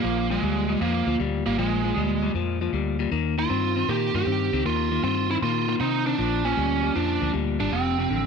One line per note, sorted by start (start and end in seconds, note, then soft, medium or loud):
0.00 0.37 A#1 medium
0.00 0.27 A#2 medium
0.00 0.31 A#3 medium
0.04 0.28 F3 medium
0.30 0.41 A#2 medium
0.30 0.41 F3 medium
0.30 0.81 G#3 medium
0.42 0.75 D2 medium
0.42 0.66 A#2 medium
0.42 0.66 G3 medium
0.68 0.79 A#2 medium
0.68 0.80 G3 medium
0.81 1.03 F2 medium
0.81 1.04 A#2 medium
0.81 1.04 F3 medium
0.81 1.17 A#3 medium
1.06 1.17 D2 medium
1.06 1.18 A#2 medium
1.06 1.18 F3 medium
1.19 1.42 D2 medium
1.19 1.43 A#2 medium
1.19 1.43 G3 medium
1.45 1.56 G#1 medium
1.45 1.56 A#2 medium
1.45 1.57 G3 medium
1.45 1.58 A#3 medium
1.58 1.91 A#1 medium
1.58 1.81 A#2 medium
1.58 1.81 F3 medium
1.58 2.31 G#3 medium
1.84 1.95 A#2 medium
1.84 1.95 F3 medium
1.96 2.29 D2 medium
1.96 2.20 A#2 medium
1.96 2.20 G3 medium
2.22 2.33 A#2 medium
2.22 2.33 G3 medium
2.34 2.67 F2 medium
2.34 2.58 A#2 medium
2.34 2.58 F3 medium
2.61 2.72 A#2 medium
2.61 2.72 F3 medium
2.73 3.06 D2 medium
2.73 2.96 A#2 medium
2.73 2.97 G3 medium
2.99 3.10 A#2 medium
2.99 3.10 G3 medium
3.11 3.44 D#2 medium
3.11 3.35 D#3 medium
3.11 3.35 A#3 medium
3.38 3.48 D#3 medium
3.38 3.49 A#3 medium
3.38 3.90 F4 medium
3.50 3.83 G2 medium
3.50 3.73 D#3 medium
3.50 3.73 C4 medium
3.76 3.87 D#3 medium
3.76 3.87 C4 medium
3.88 4.11 A#2 medium
3.88 4.12 D#3 medium
3.88 4.12 A#3 medium
3.88 4.15 G4 loud
4.14 4.25 G2 medium
4.14 4.25 D#3 medium
4.14 4.26 A#3 medium
4.14 4.62 G4 medium
4.26 4.49 G2 medium
4.26 4.50 D#3 medium
4.26 4.50 C4 medium
4.52 4.63 C#2 medium
4.52 4.64 D#3 medium
4.52 4.64 C4 medium
4.65 4.98 D#2 medium
4.65 4.89 D#3 medium
4.65 4.89 A#3 medium
4.65 5.01 F4 loud
4.91 5.02 D#3 medium
4.91 5.02 A#3 medium
5.03 5.36 G2 medium
5.03 5.27 D#3 medium
5.03 5.27 C4 medium
5.03 5.28 F4 loud
5.30 5.41 D#3 medium
5.30 5.41 C4 medium
5.30 5.36 E4 medium
5.42 5.75 A#2 medium
5.42 5.66 D#3 medium
5.42 5.66 A#3 medium
5.42 5.68 F4 loud
5.68 5.79 D#3 medium
5.68 5.79 A#3 medium
5.68 5.74 F4 medium
5.80 6.13 C3 medium
5.80 6.04 D#3 medium
5.80 6.04 C4 medium
5.80 6.06 D#4 medium
6.06 6.17 D#3 medium
6.06 6.18 C4 medium
6.06 6.46 D4 medium
6.18 6.52 A#1 medium
6.18 6.42 A#2 medium
6.18 6.42 F3 medium
6.45 6.55 A#2 medium
6.45 6.56 F3 medium
6.45 6.97 C#4 loud
6.57 6.90 D2 medium
6.57 6.80 A#2 medium
6.57 6.81 G3 medium
6.83 6.94 A#2 medium
6.83 6.94 G3 medium
6.95 7.18 F2 medium
6.95 7.19 A#2 medium
6.95 7.19 F3 medium
6.95 7.31 D4 medium
7.21 7.32 D2 medium
7.21 7.32 A#2 medium
7.21 7.33 F3 medium
7.33 7.56 D2 medium
7.33 7.57 A#2 medium
7.33 7.57 G3 medium
7.59 7.71 G#1 medium
7.59 7.71 A#2 medium
7.59 7.71 G3 medium
7.59 7.73 D4 medium
7.72 8.05 F1 medium
7.72 7.96 F2 medium
7.72 7.96 C3 medium
7.72 8.27 C4 medium
7.98 8.09 F2 medium
7.98 8.10 C3 medium
8.10 8.27 A1 medium
8.10 8.27 F2 medium
8.10 8.27 D3 medium